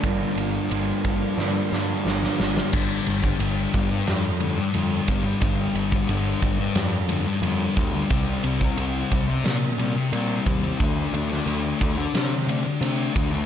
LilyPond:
<<
  \new Staff \with { instrumentName = "Clean electric guitar" } { \time 4/4 \key g \minor \tempo 4 = 89 <g, d f bes d'>4 <d f bes d'>4 <d f bes d'>8 <f bes d'>8 <d f bes d'>8 <f bes d'>8 | r1 | r1 | r1 |
r1 | }
  \new Staff \with { instrumentName = "Distorted electric guitar" } { \clef bass \time 4/4 \key g \minor <g, d g>4 <g, d g>4 <g, d g>4. <d g>8 | <g, d g>8 <g, d g>16 <d g>16 <g, d g>8 <g, d g>8. r16 <g, d g>8 <g, d g>8 <g, d g>16 <d g>16 | <g, d g>8 <g, d g>16 <d g>16 <g, d g>8 <g, d g>8. r16 <g, d g>8 <g, d g>8 <g, d g>16 <d g>16 | <c g c'>8 <c g c'>16 <g c'>16 <c g c'>8 <c g c'>8. r16 <c g c'>8 <c g c'>8 <c g c'>16 <g c'>16 |
<d a d'>8 <d a d'>16 <a d'>16 <d a d'>8 <d a d'>8. r16 <d a d'>8 <d a d'>8 <d a d'>16 <a d'>16 | }
  \new Staff \with { instrumentName = "Picked electric bass" } { \clef bass \time 4/4 \key g \minor g,,8 g,,8 g,,8 g,,8 g,8 g,8 g,,8 g,,8 | g,,8 g,,8 g,,8 g,,8 f,4 f,8 g,,8 | g,,8 g,,8 g,,8 g,,8 f,4 f,8 d,8 | c,8 c,8 c,8 c,8 bes,4 bes,8 ees,8 |
d,8 d,8 d,8 d,8 c4 c8 d,8 | }
  \new DrumStaff \with { instrumentName = "Drums" } \drummode { \time 4/4 <bd cymr>8 cymr8 cymr8 <bd cymr>8 sn8 sn8 sn16 sn16 sn16 sn16 | <cymc bd>8 cymr16 bd16 cymr8 <bd cymr>8 <cymr sn>8 cymr8 cymr8 <bd cymr>8 | <bd cymr>8 cymr16 bd16 cymr8 <bd cymr>8 <cymr sn>8 cymr8 cymr8 <bd cymr>8 | <bd cymr>8 cymr16 bd16 cymr8 <bd cymr>8 <cymr sn>8 cymr8 cymr8 <bd cymr>8 |
<bd cymr>8 cymr16 sn16 cymr8 <bd cymr>8 <cymr sn>8 cymr8 cymr8 <bd cymr>8 | }
>>